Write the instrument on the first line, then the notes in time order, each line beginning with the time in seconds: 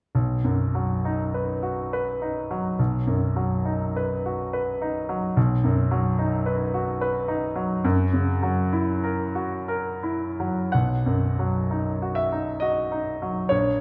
grand piano
0.15 B1
0.44 F#2
0.75 F#3
1.05 D#4
1.34 B4
1.63 F#4
1.93 B4
2.22 D#4
2.51 F#3
2.79 B1
3.07 F#2
3.36 F#3
3.65 D#4
3.96 B4
4.26 F#4
4.53 B4
4.82 D#4
5.09 F#3
5.37 B1
5.64 F#2
5.91 F#3
6.19 D#4
6.46 B4
6.74 F#4
7.01 B4
7.28 D#4
7.56 F#3
7.84 F#2
8.13 C#3
8.43 F#3
8.73 E4
9.04 A#4
9.35 F#4
9.68 A#4
10.03 E4
10.40 F#3
10.72 B1 F#5
11.06 F#2
11.39 F#3
11.71 D#4
12.02 F#4
12.15 E5
12.32 D#4
12.60 F#4 D#5
12.92 D#4
13.22 F#3
13.49 A#1 C#5